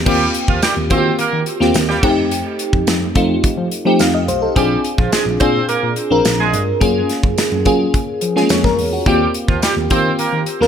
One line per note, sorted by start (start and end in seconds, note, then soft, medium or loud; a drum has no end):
0.05 0.26 D#2 medium
0.05 0.29 G3 loud
0.05 0.73 A#3 medium
0.05 0.73 C4 medium
0.05 0.74 F4 medium
0.05 0.29 G4 loud
0.05 0.74 G4 medium
0.05 kick loud
0.05 crash loud
0.34 closed hi-hat medium
0.48 0.58 D#2 medium
0.48 0.60 F3 medium
0.48 0.60 F4 loud
0.48 kick medium
0.62 0.74 G3 medium
0.62 0.74 G4 loud
0.62 snare loud
0.62 closed hi-hat medium
0.62 tambourine medium
0.77 0.91 D#2 medium
0.90 1.10 D#3 loud
0.90 1.46 A#3 medium
0.90 1.13 C4 loud
0.90 1.47 C4 medium
0.90 1.47 F4 medium
0.90 0.97 F#4 medium
0.90 1.13 C5 loud
0.90 kick medium
0.90 closed hi-hat medium
0.98 1.50 G4 medium
1.19 1.24 D#3 medium
1.19 1.41 A#3 loud
1.19 1.41 A#4 loud
1.19 closed hi-hat medium
1.33 1.43 D#3 medium
1.46 closed hi-hat medium
1.60 1.70 D#2 medium
1.60 2.03 A#3 medium
1.60 2.02 C4 medium
1.60 2.03 F4 medium
1.60 2.03 G4 medium
1.60 snare soft
1.74 1.94 D#2 loud
1.74 snare loud
1.74 closed hi-hat medium
1.74 tambourine medium
1.89 2.11 G3 loud
1.89 2.11 G4 loud
1.89 snare soft
2.03 2.42 F2 medium
2.03 2.93 A3 medium
2.03 2.93 C4 medium
2.03 2.93 D#4 medium
2.03 2.93 G4 loud
2.03 kick loud
2.03 crash medium
2.31 closed hi-hat medium
2.59 closed hi-hat medium
2.73 2.83 F2 medium
2.73 kick medium
2.87 3.07 F2 medium
2.87 snare loud
2.87 closed hi-hat medium
2.87 tambourine medium
3.15 3.35 F2 loud
3.15 3.71 A3 medium
3.15 3.72 C4 medium
3.15 3.72 D#4 medium
3.15 3.72 F4 medium
3.15 kick loud
3.15 closed hi-hat medium
3.44 3.49 F3 soft
3.44 kick loud
3.44 closed hi-hat medium
3.57 3.67 F3 medium
3.71 closed hi-hat medium
3.85 4.00 F3 medium
3.85 4.42 A3 medium
3.85 4.42 C4 medium
3.85 4.42 D#4 medium
3.85 4.42 G4 medium
3.99 4.28 F2 loud
3.99 4.13 F5 medium
3.99 snare loud
3.99 closed hi-hat medium
3.99 tambourine medium
4.14 4.28 D#5 medium
4.28 4.47 B1 medium
4.28 4.42 C5 medium
4.28 closed hi-hat medium
4.42 4.69 A4 medium
4.56 4.75 A#1 loud
4.56 4.79 G3 loud
4.56 5.23 C4 medium
4.56 5.23 D4 medium
4.56 5.24 F4 medium
4.56 4.79 G4 loud
4.56 5.24 G#4 loud
4.56 kick loud
4.56 closed hi-hat medium
4.84 closed hi-hat medium
4.98 5.08 A#1 medium
4.98 5.10 F3 medium
4.98 5.10 F4 medium
4.98 kick loud
5.12 5.24 G#3 medium
5.12 5.24 G#4 loud
5.12 snare loud
5.12 closed hi-hat medium
5.12 tambourine medium
5.26 5.36 A#1 medium
5.40 5.60 A#2 loud
5.40 5.63 C4 loud
5.40 5.96 C4 medium
5.40 5.97 D4 medium
5.40 5.97 F4 medium
5.40 5.97 G#4 medium
5.40 5.63 C5 loud
5.40 kick loud
5.40 closed hi-hat medium
5.68 5.74 A#2 soft
5.68 5.91 A#3 loud
5.68 5.91 A#4 loud
5.68 closed hi-hat medium
5.83 5.92 A#2 medium
5.96 closed hi-hat medium
6.10 6.20 A#1 medium
6.10 6.67 C4 medium
6.10 6.67 D4 medium
6.10 6.67 F4 medium
6.10 6.67 A#4 medium
6.25 6.53 A#1 medium
6.25 snare loud
6.25 closed hi-hat medium
6.25 tambourine medium
6.39 6.61 G#3 loud
6.39 6.62 G#4 loud
6.53 6.72 G2 medium
6.53 closed hi-hat medium
6.80 7.01 F#2 loud
6.80 7.48 A#3 medium
6.80 7.48 C#4 medium
6.80 7.49 F4 medium
6.80 7.49 G#4 loud
6.80 kick loud
6.80 closed hi-hat medium
7.09 snare soft
7.09 closed hi-hat medium
7.23 7.33 F#2 medium
7.23 kick loud
7.38 snare loud
7.38 closed hi-hat medium
7.38 tambourine medium
7.52 7.66 F#2 medium
7.65 7.85 F#3 medium
7.65 8.22 A#3 medium
7.65 8.22 C#4 medium
7.65 8.22 F4 medium
7.65 8.22 G#4 loud
7.65 kick medium
7.65 closed hi-hat medium
7.94 kick medium
7.94 closed hi-hat medium
8.21 8.41 F3 medium
8.21 closed hi-hat medium
8.36 8.42 G#3 medium
8.36 8.92 C#4 medium
8.36 8.50 F4 medium
8.36 8.50 G#4 medium
8.36 snare soft
8.42 8.95 A#3 medium
8.49 8.69 F2 loud
8.49 8.64 C#5 medium
8.49 snare loud
8.49 closed hi-hat medium
8.49 tambourine medium
8.64 8.91 A#4 medium
8.64 kick medium
8.64 snare soft
8.78 8.98 E2 medium
8.78 open hi-hat medium
8.93 9.19 F#4 medium
9.06 9.26 D#2 medium
9.06 9.29 G3 loud
9.06 9.74 A#3 medium
9.06 9.74 C4 medium
9.06 9.74 F4 medium
9.06 9.29 G4 loud
9.06 9.74 G4 loud
9.06 kick loud
9.06 closed hi-hat medium
9.34 closed hi-hat medium
9.48 9.58 D#2 medium
9.48 9.60 F3 medium
9.48 9.60 F4 medium
9.48 kick loud
9.62 9.74 G3 medium
9.62 9.74 G4 loud
9.62 snare loud
9.62 closed hi-hat medium
9.62 tambourine medium
9.76 9.86 D#2 medium
9.90 10.10 D#3 loud
9.90 10.47 A#3 medium
9.90 10.13 C4 loud
9.90 10.47 C4 medium
9.90 10.47 F4 medium
9.90 10.47 G4 medium
9.90 10.13 C5 loud
9.90 kick loud
9.90 closed hi-hat medium
10.19 10.24 D#3 medium
10.19 10.41 A#3 loud
10.19 10.42 A#4 loud
10.19 closed hi-hat medium
10.33 10.43 D#3 medium
10.46 closed hi-hat medium
10.61 10.68 D#2 medium
10.61 10.68 A#3 medium
10.61 10.68 C4 medium
10.61 10.68 F4 medium
10.61 10.68 A#4 medium
10.61 snare soft